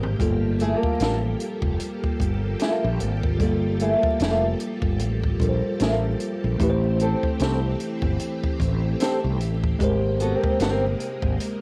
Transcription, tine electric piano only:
0.00 0.15 G#3 medium
0.00 0.16 G4 medium
0.00 0.17 A#4 medium
0.00 0.18 C5 medium
0.19 3.35 G3 medium
0.19 3.36 F4 medium
0.19 3.37 A4 medium
0.24 3.38 A#3 medium
3.38 5.35 G3 medium
3.38 5.36 F4 medium
3.38 5.37 A4 medium
3.43 5.37 A#3 medium
5.40 6.60 G3 medium
5.40 6.60 F4 medium
5.40 6.61 A4 soft
5.40 5.49 A#4 soft
5.49 6.64 C5 medium
6.59 9.75 A3 medium
6.59 9.76 E4 medium
6.59 9.77 G4 medium
6.63 6.69 B4 medium
6.70 9.81 C5 medium
9.79 11.61 G#3 medium
9.79 11.61 G4 medium
9.79 11.61 A#4 medium
9.84 11.61 C5 medium

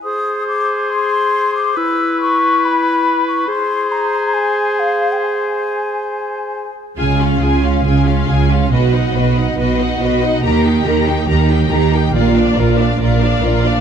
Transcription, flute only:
0.03 0.44 D#6 medium
0.47 0.91 D6 medium
0.90 1.54 C6 medium
1.55 1.79 D6 medium
1.77 2.20 E6 medium
2.21 2.66 C#6 medium
2.65 3.27 B5 medium
3.28 3.48 C#6 medium
3.49 3.93 C6 medium
3.92 4.35 A#5 medium
4.34 4.81 G#5 medium
4.79 5.14 F5 medium
5.12 5.20 G5 soft
5.21 6.73 G#5 medium

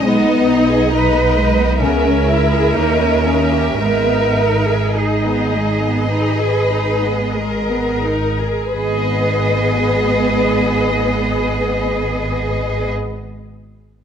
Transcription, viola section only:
0.05 0.25 G#3 soft
0.05 0.24 B3 soft
0.26 0.49 B3 soft
0.48 0.71 D#4 soft
0.71 0.94 G#4 soft
0.93 1.15 D#4 soft
1.15 1.37 B3 soft
1.37 1.59 G#3 soft
1.60 1.81 B3 soft
1.82 2.03 B3 soft
2.05 2.28 C#4 soft
2.29 2.51 E4 soft
2.52 2.75 G#4 soft
2.75 2.98 A#3 soft
2.75 3.00 C#4 soft
3.01 3.26 C#4 soft
3.26 3.52 D#4 soft
3.53 3.80 G4 soft
3.80 4.06 G#3 soft
3.80 4.07 B3 soft
4.08 4.36 B3 soft
4.38 4.66 D#4 soft
4.66 4.95 G#4 soft
4.95 5.24 D#4 soft
5.25 5.53 B3 soft
5.54 5.83 G#3 soft
5.83 6.11 B3 soft
6.12 6.39 D#4 soft
6.41 6.71 G#4 soft
6.72 7.03 D#4 soft
7.04 7.36 B3 soft
7.36 7.69 G#3 soft
7.70 8.05 B3 soft
8.04 8.40 D#4 soft
8.40 8.75 G#4 soft
8.75 12.91 B3 soft

